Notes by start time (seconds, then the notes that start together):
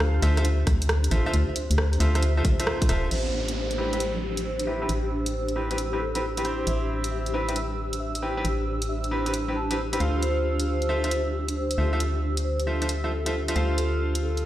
Already playing: D2 D4 F4 G4 A4 C5 F5
0.00 cross-stick
0.22 D2 F4 A4 C5 E5, open hi-hat
0.37 F4 A4 C5 E5, cross-stick, closed hi-hat
0.45 closed hi-hat
0.67 D2, kick, cross-stick, open hi-hat
0.82 closed hi-hat
0.89 cross-stick, open hi-hat
1.04 closed hi-hat
1.11 A1 F4 A4 C5 E5, open hi-hat
1.26 F4 A4 C5 E5
1.34 D2, closed hi-hat
1.56 open hi-hat
1.71 D2, closed hi-hat
1.78 cross-stick
1.93 open hi-hat
2.00 D2 F4 A4 C5 E5, open hi-hat
2.15 F4 A4 C5 E5, cross-stick, closed hi-hat
2.23 closed hi-hat
2.37 F4 A4 C5 E5
2.45 kick, open hi-hat
2.60 F4 A4 C5 E5, cross-stick, closed hi-hat
2.67 cross-stick
2.82 kick, closed hi-hat
2.89 D1 F4 A4 C5 E5, cross-stick, open hi-hat
3.11 A1 C5 E6, closed hi-hat, crash, downlifter
3.48 closed hi-hat
3.55 C5
3.71 closed hi-hat
3.78 C4 E4 G4 B4
3.93 C4 E4 G4 B4 C5, closed hi-hat
4.00 closed hi-hat
4.37 closed hi-hat
4.45 C5
4.60 closed hi-hat
4.67 C4 E4 G4 B4 E5
4.82 C4 E4 G4 B4
4.89 A1, closed hi-hat
5.26 closed hi-hat
5.33 C5
5.49 closed hi-hat
5.56 C4 E4 G4 B4
5.71 C4 E4 G4 B4, closed hi-hat
5.78 closed hi-hat
5.93 C4 E4 G4 B4
6.00 A4
6.15 C4 E4 G4 B4, closed hi-hat
6.37 C4 E4 G4 B4, closed hi-hat
6.45 C4 E4 G4 C5, closed hi-hat
6.67 A1 E5, closed hi-hat
7.04 closed hi-hat
7.11 E5
7.26 closed hi-hat
7.34 C4 E4 G4 B4
7.48 C4 E4 G4 B4 E5, closed hi-hat
7.56 closed hi-hat
7.93 closed hi-hat
8.00 E5
8.15 closed hi-hat
8.22 C4 E4 G4 B4 G5
8.37 C4 E4 G4 B4
8.45 A1, closed hi-hat
8.82 closed hi-hat
8.89 E5
9.04 closed hi-hat
9.11 C4 E4 G4 B4
9.26 C4 E4 G4 B4, closed hi-hat
9.34 closed hi-hat
9.48 C4 E4 G4 B4
9.56 A5
9.71 C4 E4 G4 B4, closed hi-hat
9.93 C4 E4 G4 B4, closed hi-hat
10.00 D2 F4 A4 C5 F5, closed hi-hat
10.22 C5, closed hi-hat
10.60 closed hi-hat
10.67 C5
10.82 closed hi-hat
10.89 F4 A4 C5 E5
11.04 F4 A4 C5 E5, closed hi-hat
11.11 closed hi-hat
11.48 closed hi-hat
11.56 C5
11.71 closed hi-hat
11.78 D2 F4 A4 C5 E5
11.93 F4 A4 C5 E5
12.00 closed hi-hat
12.37 closed hi-hat
12.45 C5
12.60 closed hi-hat
12.67 F4 A4 C5 E5
12.82 F4 A4 C5 E5, closed hi-hat
12.89 closed hi-hat
13.04 F4 A4 C5 E5
13.11 A4
13.26 F4 A4 C5 E5, closed hi-hat
13.48 F4 A4 C5 E5, closed hi-hat
13.56 D2 F4 A4 C5 F5, closed hi-hat
13.78 A4, closed hi-hat
14.15 closed hi-hat
14.22 A4
14.37 closed hi-hat